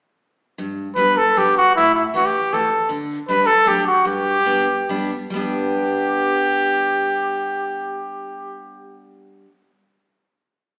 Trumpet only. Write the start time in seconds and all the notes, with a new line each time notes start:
0.95 B4
1.17 A4
1.37 G4
1.57 F#4
1.76 E4
1.95 E4
2.15 F#4
2.25 G4
2.53 A4
3.28 B4
3.46 A4
3.68 G4
3.86 F#4
4.06 G4
5.34 G4